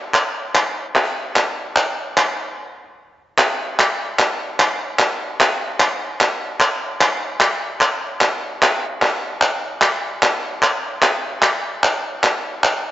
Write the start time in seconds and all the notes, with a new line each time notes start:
0.14 clap
0.55 clap
0.95 clap
1.36 clap
1.76 clap
2.18 clap
3.38 clap
3.80 clap
4.19 clap
4.60 clap
4.99 clap
5.40 clap
5.80 clap
6.21 clap
6.61 clap
7.01 clap
7.40 clap
7.81 clap
8.21 clap
8.62 clap
9.02 clap
9.41 clap
9.82 clap
10.23 clap
10.62 clap
11.02 clap
11.42 clap
11.84 clap
12.24 clap
12.64 clap